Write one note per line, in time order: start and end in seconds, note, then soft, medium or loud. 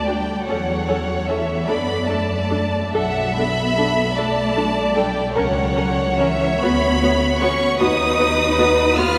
0.00 0.34 D2 medium
0.00 0.43 D5 medium
0.07 0.48 G3 medium
0.07 0.16 D4 soft
0.07 0.15 F#4 soft
0.07 0.47 G5 medium
0.45 1.54 E2 medium
0.45 1.27 F#3 medium
0.45 0.56 C#4 soft
0.45 1.68 C#5 medium
0.45 1.25 F#5 medium
0.49 0.57 A4 soft
0.88 0.96 C#4 soft
0.88 0.97 A4 soft
1.27 1.68 E3 medium
1.27 1.36 C#4 soft
1.27 1.37 A4 soft
1.27 1.67 E5 medium
1.67 2.78 F#2 soft
1.67 2.09 B3 medium
1.67 1.76 D4 soft
1.67 1.76 A4 soft
1.67 2.94 D5 soft
1.67 2.08 B5 medium
2.08 2.95 A3 soft
2.08 2.17 D4 soft
2.08 2.17 A4 soft
2.08 2.94 A5 medium
2.50 2.59 D4 soft
2.50 2.58 A4 soft
2.93 4.03 B1 medium
2.93 3.37 F#3 medium
2.93 3.02 D4 soft
2.93 3.02 A4 medium
2.93 4.14 E5 medium
2.93 3.37 F#5 medium
3.37 4.18 B3 medium
3.37 3.46 D4 soft
3.37 3.46 A4 soft
3.37 4.15 B5 medium
3.78 3.86 D4 soft
3.78 3.86 A4 soft
4.16 5.20 B1 medium
4.16 4.93 A3 medium
4.16 4.26 D4 soft
4.16 4.26 A4 medium
4.16 5.33 D5 medium
4.16 4.93 A5 medium
4.57 4.65 D4 soft
4.57 4.65 A4 soft
4.95 5.34 G3 medium
4.95 5.03 D4 soft
4.95 5.03 A4 soft
4.95 5.34 G5 medium
5.32 6.45 C#2 medium
5.32 6.17 F#3 medium
5.32 5.44 A#4 medium
5.32 7.75 C#5 medium
5.32 6.17 F#5 medium
5.36 5.44 C#4 medium
5.77 5.85 C#4 soft
5.77 5.85 A#4 soft
6.19 6.61 E3 medium
6.19 6.27 C#4 medium
6.19 6.27 A#4 soft
6.19 6.60 E5 medium
6.60 7.66 D2 medium
6.60 7.39 B3 medium
6.60 6.71 B3 medium
6.60 6.70 F#4 medium
6.60 7.41 B5 medium
7.02 7.10 B3 soft
7.02 7.10 F#4 medium
7.41 7.49 B3 medium
7.41 7.80 C#4 medium
7.41 7.49 F#4 medium
7.41 7.80 C#6 medium
7.79 8.84 D#2 medium
7.79 7.89 B3 medium
7.79 8.95 D#4 medium
7.79 7.88 F#4 medium
7.79 9.18 B4 medium
7.79 8.96 D#6 medium
8.20 8.28 B3 soft
8.20 8.28 F#4 soft
8.58 8.66 B3 medium
8.58 8.67 F#4 medium
8.96 9.18 D#2 medium
8.96 9.05 B3 medium
8.96 9.18 F4 medium
8.96 9.05 F#4 medium
8.96 9.18 F6 medium